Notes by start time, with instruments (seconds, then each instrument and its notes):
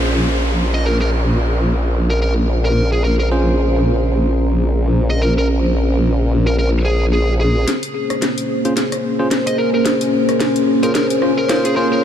Already playing: wobble bass A#1, tine electric piano C#4 F4 G#4 C5, analog synth pad C#4 G#4 C5 A#5, downlifter
0.74 lead electric guitar D#5
0.86 lead electric guitar A#4
1.01 lead electric guitar A#4
2.10 lead electric guitar A#4
2.22 lead electric guitar A#4
2.65 lead electric guitar A#4
2.92 lead electric guitar G#4
3.04 lead electric guitar A#4
3.19 lead electric guitar A#4
3.31 tine electric piano C#4 F4 G#4 C5
5.10 lead electric guitar D#5
5.22 lead electric guitar A#4
5.38 lead electric guitar A#4
6.47 lead electric guitar A#4
6.59 lead electric guitar A#4
6.85 lead electric guitar G#4
7.13 lead electric guitar G#4
7.40 lead electric guitar G#4
7.67 analog synth pad A#3 C#4 G#4 C5, snare, closed hi-hat
7.83 closed hi-hat
8.10 cross-stick, closed hi-hat
8.22 snare, closed hi-hat
8.38 closed hi-hat
8.65 tine electric piano C#4 F4 G#4 C5, closed hi-hat
8.77 snare, closed hi-hat
8.92 cross-stick, closed hi-hat
9.19 tine electric piano C#4 F4 G#4 C5
9.31 snare, closed hi-hat
9.47 lead electric guitar D#5, closed hi-hat
9.58 lead electric guitar A#4
9.74 lead electric guitar A#4
9.86 snare, closed hi-hat
10.01 closed hi-hat
10.29 cross-stick, closed hi-hat
10.40 snare, closed hi-hat
10.56 closed hi-hat
10.83 tine electric piano C#4 F4 G#4 C5, lead electric guitar A#4, closed hi-hat
10.95 lead electric guitar A#4, snare, closed hi-hat
11.10 closed hi-hat
11.22 tine electric piano C#4 F4 G#4 C5, cross-stick
11.38 lead electric guitar A#4
11.49 tine electric piano C#4 F4 G#4 C5, snare, closed hi-hat
11.65 lead electric guitar G#4, closed hi-hat
11.76 tine electric piano C#4 F4 G#4 C5, lead electric guitar A#4
11.92 lead electric guitar A#4